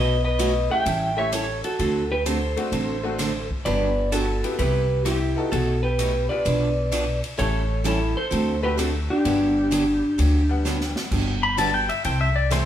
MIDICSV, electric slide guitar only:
0, 0, Header, 1, 2, 480
1, 0, Start_track
1, 0, Key_signature, 1, "major"
1, 0, Tempo, 466200
1, 1846, Time_signature, 4, 2, 24, 8
1, 13028, End_track
2, 0, Start_track
2, 0, Title_t, "Electric slide guitar"
2, 0, Program_c, 0, 29
2, 0, Note_on_c, 0, 71, 73
2, 0, Note_on_c, 0, 75, 95
2, 233, Note_off_c, 0, 71, 0
2, 240, Note_off_c, 0, 75, 0
2, 252, Note_on_c, 0, 75, 97
2, 257, Note_on_c, 0, 71, 79
2, 697, Note_off_c, 0, 75, 0
2, 700, Note_off_c, 0, 71, 0
2, 735, Note_on_c, 0, 79, 106
2, 746, Note_on_c, 0, 76, 81
2, 1184, Note_off_c, 0, 76, 0
2, 1214, Note_on_c, 0, 76, 91
2, 1221, Note_on_c, 0, 73, 76
2, 1226, Note_off_c, 0, 79, 0
2, 1355, Note_off_c, 0, 73, 0
2, 1370, Note_on_c, 0, 73, 89
2, 1371, Note_on_c, 0, 69, 64
2, 1373, Note_off_c, 0, 76, 0
2, 1670, Note_off_c, 0, 69, 0
2, 1690, Note_off_c, 0, 73, 0
2, 1694, Note_on_c, 0, 66, 61
2, 1694, Note_on_c, 0, 69, 80
2, 2139, Note_off_c, 0, 66, 0
2, 2174, Note_off_c, 0, 69, 0
2, 2178, Note_on_c, 0, 71, 84
2, 2179, Note_on_c, 0, 67, 64
2, 2320, Note_off_c, 0, 67, 0
2, 2329, Note_on_c, 0, 72, 77
2, 2334, Note_off_c, 0, 71, 0
2, 2339, Note_on_c, 0, 69, 59
2, 3570, Note_off_c, 0, 72, 0
2, 3575, Note_off_c, 0, 69, 0
2, 3760, Note_on_c, 0, 74, 93
2, 3765, Note_on_c, 0, 71, 74
2, 4212, Note_off_c, 0, 71, 0
2, 4245, Note_on_c, 0, 69, 91
2, 4254, Note_on_c, 0, 66, 70
2, 4258, Note_off_c, 0, 74, 0
2, 4697, Note_off_c, 0, 66, 0
2, 4723, Note_on_c, 0, 71, 94
2, 4735, Note_off_c, 0, 69, 0
2, 4739, Note_on_c, 0, 67, 72
2, 5171, Note_off_c, 0, 71, 0
2, 5179, Note_off_c, 0, 67, 0
2, 5199, Note_on_c, 0, 67, 76
2, 5213, Note_on_c, 0, 64, 62
2, 5656, Note_off_c, 0, 64, 0
2, 5677, Note_off_c, 0, 67, 0
2, 5682, Note_on_c, 0, 69, 85
2, 5695, Note_on_c, 0, 66, 67
2, 5991, Note_off_c, 0, 66, 0
2, 5997, Note_off_c, 0, 69, 0
2, 6001, Note_on_c, 0, 71, 97
2, 6012, Note_on_c, 0, 67, 70
2, 6458, Note_off_c, 0, 67, 0
2, 6475, Note_off_c, 0, 71, 0
2, 6479, Note_on_c, 0, 74, 86
2, 6487, Note_on_c, 0, 71, 66
2, 7403, Note_off_c, 0, 74, 0
2, 7407, Note_off_c, 0, 71, 0
2, 7606, Note_on_c, 0, 73, 98
2, 7615, Note_on_c, 0, 69, 81
2, 8057, Note_off_c, 0, 69, 0
2, 8091, Note_on_c, 0, 69, 94
2, 8098, Note_on_c, 0, 64, 75
2, 8100, Note_off_c, 0, 73, 0
2, 8393, Note_off_c, 0, 64, 0
2, 8409, Note_off_c, 0, 69, 0
2, 8412, Note_on_c, 0, 72, 100
2, 8422, Note_on_c, 0, 69, 73
2, 8862, Note_off_c, 0, 69, 0
2, 8886, Note_off_c, 0, 72, 0
2, 8890, Note_on_c, 0, 71, 92
2, 8899, Note_on_c, 0, 67, 75
2, 9040, Note_off_c, 0, 67, 0
2, 9047, Note_off_c, 0, 71, 0
2, 9051, Note_on_c, 0, 69, 85
2, 9058, Note_on_c, 0, 66, 64
2, 9138, Note_off_c, 0, 69, 0
2, 9143, Note_off_c, 0, 66, 0
2, 9372, Note_on_c, 0, 67, 77
2, 9381, Note_on_c, 0, 62, 59
2, 11249, Note_off_c, 0, 67, 0
2, 11253, Note_off_c, 0, 62, 0
2, 13028, End_track
0, 0, End_of_file